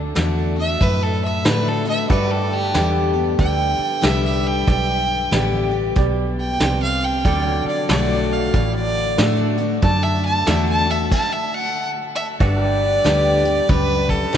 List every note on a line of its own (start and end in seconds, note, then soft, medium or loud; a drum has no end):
0.00 0.15 D2 medium
0.00 0.14 D3 medium
0.00 2.06 F#4 medium
0.00 2.06 A4 medium
0.00 2.07 D5 medium
0.15 0.79 E2 medium
0.15 0.54 D3 medium
0.15 0.54 A3 medium
0.15 0.55 D4 medium
0.15 0.55 F#4 medium
0.15 snare loud
0.15 closed hi-hat medium
0.56 0.81 D4 soft
0.56 0.80 F#4 medium
0.61 0.84 E5 medium
0.81 1.43 F#2 medium
0.81 2.05 A2 medium
0.81 1.05 B4 medium
0.81 kick loud
0.81 closed hi-hat medium
1.03 1.24 A4 medium
1.25 1.47 E5 medium
1.45 2.08 A2 medium
1.45 1.83 D3 medium
1.45 1.84 A3 medium
1.45 1.84 D4 loud
1.45 1.84 F#4 loud
1.45 1.70 B4 medium
1.45 snare loud
1.45 closed hi-hat medium
1.68 1.88 A4 medium
1.85 2.10 D4 soft
1.85 2.09 F#4 medium
1.85 2.09 E5 medium
1.85 closed hi-hat medium
2.09 3.34 G2 medium
2.09 2.73 G2 medium
2.09 2.30 F#4 medium
2.09 2.65 G4 medium
2.09 2.36 A4 medium
2.09 2.33 B4 medium
2.09 2.65 B4 medium
2.09 2.65 D5 medium
2.09 7.23 D5 medium
2.09 kick loud
2.09 closed hi-hat medium
2.30 7.22 G4 medium
2.30 2.54 A4 medium
2.36 7.22 B4 medium
2.53 2.87 G4 medium
2.74 3.37 E2 medium
2.74 3.12 D3 medium
2.74 3.13 G3 medium
2.74 3.13 B3 medium
2.74 3.29 G4 medium
2.74 3.12 G4 loud
2.74 3.29 B4 medium
2.74 3.30 D5 medium
2.74 snare loud
2.74 closed hi-hat medium
3.13 3.38 B3 soft
3.13 3.37 G4 soft
3.38 3.76 D2 medium
3.38 4.00 D3 medium
3.38 3.93 G4 medium
3.38 3.94 B4 medium
3.38 3.94 D5 medium
3.38 4.06 G5 loud
3.38 kick loud
3.38 closed hi-hat medium
3.79 muted fingered electric bass stroke soft
4.02 4.66 C2 medium
4.02 4.64 D3 medium
4.02 4.65 G3 loud
4.02 4.65 B3 loud
4.02 4.58 G4 medium
4.02 4.65 G4 loud
4.02 4.58 B4 medium
4.02 4.58 D5 medium
4.02 4.24 E5 loud
4.02 snare loud
4.02 closed hi-hat medium
4.25 4.48 E5 medium
4.43 5.71 G5 loud
4.43 closed hi-hat medium
4.67 5.30 B1 medium
4.67 5.92 G2 medium
4.67 5.23 G4 medium
4.67 5.23 B4 medium
4.67 5.23 D5 medium
4.67 kick loud
4.67 closed hi-hat medium
5.31 5.95 A1 medium
5.31 5.70 D3 medium
5.31 5.71 G3 medium
5.31 5.71 B3 medium
5.31 5.87 G4 medium
5.31 5.70 G4 loud
5.31 5.87 B4 medium
5.31 5.88 D5 medium
5.31 snare loud
5.31 closed hi-hat medium
5.71 5.96 B3 soft
5.71 5.95 G4 medium
5.96 6.59 B1 medium
5.96 6.58 B2 medium
5.96 6.51 G4 loud
5.96 6.52 B4 medium
5.96 6.52 D5 loud
5.96 kick loud
5.96 closed hi-hat medium
6.40 6.81 G5 medium
6.60 7.23 C2 medium
6.60 7.23 C3 loud
6.60 7.16 G4 medium
6.60 7.16 B4 medium
6.60 7.16 D5 medium
6.60 snare loud
6.60 closed hi-hat medium
6.83 7.06 F5 loud
7.00 7.66 G5 medium
7.00 closed hi-hat medium
7.24 7.62 D2 medium
7.24 7.88 D3 medium
7.24 7.80 F#3 medium
7.24 7.45 G3 medium
7.24 7.80 A4 medium
7.24 11.09 A4 medium
7.24 7.80 D5 medium
7.24 11.09 D5 medium
7.24 kick loud
7.24 closed hi-hat medium
7.45 11.08 F#3 medium
7.65 7.89 D5 medium
7.65 muted fingered electric bass stroke soft
7.89 8.52 B1 medium
7.89 8.51 D3 medium
7.89 8.52 A3 medium
7.89 8.52 D4 medium
7.89 8.44 F#4 medium
7.89 8.52 F#4 loud
7.89 8.44 A4 medium
7.89 8.44 D5 medium
7.89 8.34 D5 medium
7.89 snare loud
7.89 closed hi-hat medium
8.33 8.74 F5 medium
8.53 9.16 A1 medium
8.53 9.78 A2 medium
8.53 9.09 F#4 medium
8.53 9.09 A4 medium
8.53 9.09 D5 medium
8.53 kick loud
8.53 closed hi-hat medium
8.75 9.38 D5 loud
9.18 9.81 A2 medium
9.18 9.57 D3 medium
9.18 9.57 A3 medium
9.18 9.57 D4 loud
9.18 9.73 F#4 medium
9.18 9.56 F#4 loud
9.18 9.73 A4 medium
9.18 9.74 D5 medium
9.18 snare loud
9.18 closed hi-hat medium
9.58 9.83 D4 soft
9.58 9.82 F#4 medium
9.58 closed hi-hat medium
9.82 10.45 F#2 medium
9.82 10.46 D3 medium
9.82 10.38 F#4 medium
9.82 10.38 A4 medium
9.82 10.38 D5 medium
9.82 10.05 A5 medium
9.82 kick loud
9.82 closed hi-hat medium
10.04 10.25 E5 loud
10.25 10.48 A5 loud
10.47 11.10 E2 medium
10.47 10.85 D3 medium
10.47 10.86 A3 medium
10.47 10.86 D4 medium
10.47 11.02 F#4 medium
10.47 10.85 F#4 loud
10.47 11.02 A4 medium
10.47 11.03 D5 medium
10.47 10.68 E5 medium
10.47 snare loud
10.47 closed hi-hat medium
10.69 10.92 A5 loud
10.87 11.11 D4 soft
10.87 11.10 F#4 medium
10.91 11.11 E5 medium
11.11 11.34 A5 loud
11.11 kick loud
11.11 crash medium
11.33 11.56 E5 medium
11.54 11.88 F#5 loud
12.15 12.27 E5 loud
12.40 12.98 G1 medium
12.40 13.64 G2 medium
12.40 14.37 D4 medium
12.40 12.61 F#4 medium
12.40 12.96 G4 medium
12.40 12.66 A4 medium
12.40 12.96 B4 medium
12.40 13.72 D5 medium
12.40 12.96 D5 medium
12.40 kick loud
12.40 closed hi-hat medium
12.61 14.37 G4 medium
12.66 14.37 B4 medium
13.04 13.59 D2 medium
13.04 13.43 D3 medium
13.04 13.43 G3 medium
13.04 13.43 B3 medium
13.04 13.60 G4 medium
13.04 13.43 G4 loud
13.04 13.60 B4 medium
13.04 13.60 D5 medium
13.04 snare loud
13.04 closed hi-hat medium
13.44 13.69 B3 soft
13.44 13.68 G4 medium
13.44 closed hi-hat medium
13.69 14.24 C#2 medium
13.69 14.31 F#2 medium
13.69 14.24 G4 medium
13.69 14.24 B4 medium
13.69 14.12 B4 loud
13.69 14.24 D5 medium
13.69 kick loud
13.69 closed hi-hat medium
14.09 14.36 A4 medium
14.09 kick medium
14.32 14.37 B1 medium
14.32 14.37 G2 medium
14.32 14.37 G4 medium
14.32 14.37 B4 medium
14.32 14.37 D5 medium
14.32 snare loud
14.32 closed hi-hat medium